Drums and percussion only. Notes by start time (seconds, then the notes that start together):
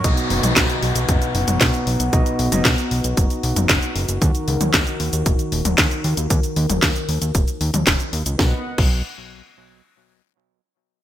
0.04 kick, closed hi-hat, cabasa
0.17 closed hi-hat, cabasa
0.30 open hi-hat
0.43 closed hi-hat, high tom, cabasa
0.56 kick, snare, clap, closed hi-hat, cabasa
0.69 closed hi-hat, cabasa
0.82 open hi-hat
0.95 closed hi-hat, cabasa
1.09 kick, closed hi-hat, cabasa
1.22 closed hi-hat, cabasa
1.35 open hi-hat
1.48 closed hi-hat, high tom, cabasa
1.61 kick, snare, clap, closed hi-hat, cabasa
1.74 closed hi-hat, cabasa
1.87 open hi-hat
2.00 closed hi-hat, cabasa
2.13 kick, closed hi-hat, cabasa
2.26 closed hi-hat, cabasa
2.39 open hi-hat
2.52 closed hi-hat, high tom, cabasa
2.65 kick, snare, clap, closed hi-hat, cabasa
2.78 closed hi-hat, cabasa
2.91 open hi-hat
3.04 closed hi-hat, cabasa
3.17 kick, closed hi-hat, cabasa
3.30 closed hi-hat, cabasa
3.43 open hi-hat
3.56 closed hi-hat, high tom, cabasa
3.69 kick, snare, clap, closed hi-hat, cabasa
3.82 closed hi-hat, cabasa
3.96 open hi-hat
4.09 closed hi-hat, cabasa
4.22 kick, closed hi-hat, cabasa
4.35 closed hi-hat, cabasa
4.48 open hi-hat
4.61 closed hi-hat, high tom, cabasa
4.74 kick, snare, clap, closed hi-hat, cabasa
4.87 closed hi-hat, cabasa
5.00 open hi-hat
5.13 closed hi-hat, cabasa
5.26 kick, closed hi-hat, cabasa
5.39 closed hi-hat, cabasa
5.52 open hi-hat
5.65 closed hi-hat, high tom, cabasa
5.78 kick, snare, clap, closed hi-hat, cabasa
5.91 closed hi-hat, cabasa
6.04 open hi-hat
6.17 closed hi-hat, cabasa
6.30 kick, closed hi-hat, cabasa
6.43 closed hi-hat, cabasa
6.56 open hi-hat
6.70 closed hi-hat, high tom, cabasa
6.83 kick, snare, clap, closed hi-hat, cabasa
6.96 closed hi-hat, cabasa
7.09 open hi-hat
7.22 closed hi-hat, cabasa
7.35 kick, closed hi-hat, cabasa
7.48 closed hi-hat, cabasa
7.61 open hi-hat
7.74 closed hi-hat, high tom, cabasa
7.87 kick, snare, clap, closed hi-hat, cabasa
8.00 closed hi-hat, cabasa
8.13 open hi-hat
8.26 closed hi-hat, cabasa
8.39 kick, snare
8.78 kick, crash